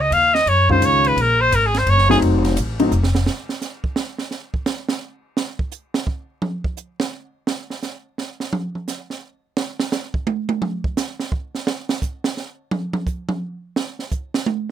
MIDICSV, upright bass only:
0, 0, Header, 1, 2, 480
1, 0, Start_track
1, 0, Tempo, 350058
1, 160, Time_signature, 3, 2, 24, 8
1, 20172, End_track
2, 0, Start_track
2, 0, Title_t, "Upright bass"
2, 0, Program_c, 0, 32
2, 0, Note_on_c, 0, 37, 89
2, 138, Note_off_c, 0, 37, 0
2, 146, Note_on_c, 0, 39, 88
2, 618, Note_off_c, 0, 39, 0
2, 633, Note_on_c, 0, 42, 98
2, 1096, Note_off_c, 0, 42, 0
2, 1104, Note_on_c, 0, 37, 96
2, 1577, Note_off_c, 0, 37, 0
2, 1589, Note_on_c, 0, 34, 90
2, 2059, Note_off_c, 0, 34, 0
2, 2072, Note_on_c, 0, 32, 101
2, 2541, Note_off_c, 0, 32, 0
2, 2558, Note_on_c, 0, 30, 103
2, 3024, Note_off_c, 0, 30, 0
2, 3040, Note_on_c, 0, 29, 96
2, 3505, Note_off_c, 0, 29, 0
2, 3515, Note_on_c, 0, 33, 105
2, 3982, Note_off_c, 0, 33, 0
2, 3999, Note_on_c, 0, 29, 100
2, 4464, Note_off_c, 0, 29, 0
2, 20172, End_track
0, 0, End_of_file